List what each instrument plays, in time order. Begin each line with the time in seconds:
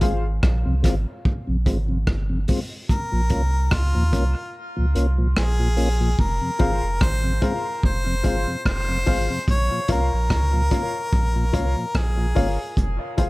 0.01 sub bass G#1, tonewheel organ G#3 C4 F4, upright piano F4 G#4 C5 F5, kick, closed hi-hat
0.43 sub bass A#1, kick, cross-stick
0.65 sub bass C2, tonewheel organ F2 C3
0.83 sub bass G#1, tonewheel organ G#3 C4 F4, kick, cross-stick, closed hi-hat
1.25 kick
1.47 sub bass A#1, tonewheel organ F2 C3
1.66 sub bass G#1, tonewheel organ G#3 C4 F4, kick, closed hi-hat
1.88 tonewheel organ F2 C3
2.07 sub bass G1, kick, cross-stick
2.30 tonewheel organ F2 C3
2.48 tonewheel organ G#3 C4 F4, kick, open hi-hat
2.89 harmonica A#4, kick, hi-hat pedal
3.12 sub bass A#1, tonewheel organ A#2 F3
3.30 sub bass C2, tonewheel organ A#3 C#4 F4, kick, closed hi-hat
3.71 sub bass C#2, harmonica F4, kick, cross-stick
3.94 sub bass D#2, tonewheel organ A#2 F3
4.12 sub bass C2, tonewheel organ A#3 C#4 F4, kick, closed hi-hat
4.76 sub bass C#2, tonewheel organ A#2 F3
4.95 sub bass C2, tonewheel organ A#3 C#4 F4, closed hi-hat
5.18 tonewheel organ A#2 F3
5.37 sub bass A#1, harmonica G#4, cross-stick
5.59 tonewheel organ A#2 F3
5.77 tonewheel organ A#3 C#4 F4, open hi-hat
6.00 tonewheel organ A#2 F3
6.19 sub bass F1, harmonica A#4, kick
6.41 tonewheel organ F2 C3
6.59 sub bass G1, tonewheel organ G#3 C4 F4, upright piano F4 G#4 C5 F5, kick, closed hi-hat
6.84 sub bass F1
7.01 sub bass G#1, harmonica C5, kick, cross-stick
7.24 tonewheel organ F2 C3
7.42 tonewheel organ G#3 C4 F4, upright piano F4 G#4 C5 F5, harmonica A#4, kick, closed hi-hat
7.83 sub bass F1, harmonica C5, kick
8.06 tonewheel organ F2 C3
8.23 sub bass G1, tonewheel organ G#3 C4 F4, upright piano F4 G#4 C5 F5, kick, closed hi-hat
8.47 tonewheel organ F2 C3
8.66 sub bass F1, harmonica C5, kick, cross-stick
8.89 tonewheel organ F2 C3
9.06 sub bass G#1, tonewheel organ G#3 C4 F4, upright piano F4 G#4 C5 F5, kick, open hi-hat
9.30 tonewheel organ F2 C3
9.47 sub bass A#1, harmonica C#5, kick, hi-hat pedal
9.71 tonewheel organ A#2 F3
9.88 sub bass C2, tonewheel organ A#3 C#4 F4, upright piano F4 A#4 C#5 F5, harmonica A#4, kick, closed hi-hat
10.14 sub bass A#1
10.30 sub bass C#2, kick, cross-stick
10.53 tonewheel organ A#2 F3
10.71 tonewheel organ A#3 C#4 F4, upright piano F4 A#4 C#5 F5, kick, closed hi-hat
11.13 sub bass A#1, kick
11.36 tonewheel organ A#2 F3
11.53 sub bass C2, tonewheel organ A#3 C#4 F4, upright piano F4 A#4 C#5 F5, kick, closed hi-hat
11.76 tonewheel organ A#2 F3
11.95 sub bass A#1, harmonica G#4, kick, cross-stick
12.17 tonewheel organ A#2 F3
12.35 sub bass G1, tonewheel organ A#3 C#4 F4, upright piano F4 A#4 C#5 F5, kick, open hi-hat
12.77 sub bass F1, kick, hi-hat pedal
13.17 sub bass G1, upright piano F4 G#4 C5 F5, kick, closed hi-hat